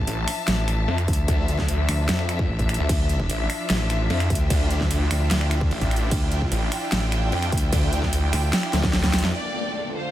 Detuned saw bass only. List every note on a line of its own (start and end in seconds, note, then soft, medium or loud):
0.07 0.26 A1 medium
0.88 1.07 F2 loud
1.28 1.47 D2 loud
1.48 1.87 D2 medium
2.09 2.47 F2 medium
2.79 2.88 D2 loud
3.30 3.48 A1 loud
4.10 4.29 F2 loud
4.50 4.69 D2 loud
4.70 5.09 D2 loud
5.71 6.10 A1 loud
6.52 6.70 A1 loud
7.32 7.51 F2 loud
7.73 7.91 D2 loud
7.93 8.31 D2 loud
8.73 8.82 D2 loud
8.83 9.22 D2 loud
9.24 9.32 F2 loud